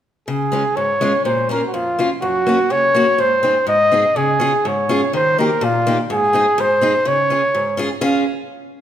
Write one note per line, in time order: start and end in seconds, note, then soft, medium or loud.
0.28 0.64 C#3 medium
0.28 0.78 G#4 medium
0.52 0.63 G#3 medium
0.52 0.63 C#4 soft
0.52 0.63 F4 medium
0.76 1.13 G#2 soft
0.76 1.24 C#5 medium
1.01 1.11 G#3 medium
1.01 1.12 C#4 medium
1.01 1.12 F4 medium
1.25 1.61 A#2 medium
1.25 1.48 C5 medium
1.49 1.60 A#3 medium
1.49 1.60 C#4 soft
1.49 1.61 F4 medium
1.49 1.66 A#4 medium
1.67 1.75 F#4 soft
1.74 2.10 F2 medium
1.74 2.10 F4 medium
1.99 2.09 A#3 soft
1.99 2.09 C#4 soft
1.99 2.10 F4 medium
2.22 2.58 F#2 medium
2.22 2.73 F#4 medium
2.47 2.57 A#3 medium
2.47 2.58 C#4 soft
2.47 2.58 F#4 medium
2.70 3.07 C#3 medium
2.70 3.22 C#5 loud
2.95 3.05 A#3 medium
2.95 3.06 C#4 soft
2.95 3.06 F#4 medium
3.18 3.55 G#2 medium
3.18 3.68 C5 medium
3.43 3.54 C4 medium
3.43 3.54 D#4 soft
3.43 3.55 G#4 soft
3.67 4.04 G#2 medium
3.67 4.18 D#5 medium
3.92 4.03 C4 soft
3.92 4.03 D#4 soft
3.92 4.04 G#4 medium
4.16 4.53 C#3 medium
4.16 4.69 G#4 medium
4.40 4.51 C#4 medium
4.40 4.52 F4 soft
4.40 4.52 G#4 medium
4.65 5.02 G#2 medium
4.65 5.15 C#5 medium
4.89 5.00 C#4 medium
4.89 5.01 F4 soft
4.89 5.01 G#4 medium
5.13 5.50 D#3 medium
5.13 5.38 C5 medium
5.38 5.49 A#3 medium
5.38 5.49 D#4 soft
5.38 5.50 G4 medium
5.38 5.66 A#4 medium
5.61 5.97 A#2 medium
5.61 5.99 F4 medium
5.87 5.97 A#3 medium
5.87 5.97 D#4 medium
5.87 5.98 G4 medium
6.10 6.46 G#2 medium
6.10 6.62 G#4 medium
6.33 6.44 C4 soft
6.33 6.45 D#4 medium
6.33 6.45 G#4 medium
6.58 6.94 G#2 medium
6.58 7.09 C5 medium
6.81 6.92 C4 medium
6.81 6.93 D#4 medium
6.81 6.93 G#4 medium
7.05 7.41 C#3 medium
7.05 7.79 C#5 medium
7.30 7.41 C#4 medium
7.30 7.41 F4 soft
7.30 7.41 G#4 medium
7.55 7.90 G#2 medium
7.77 7.88 C#4 medium
7.77 7.88 F4 medium
7.77 7.89 G#4 medium
8.01 8.24 C#4 medium
8.01 8.24 F4 medium
8.01 8.24 G#4 medium
8.01 8.25 F5 medium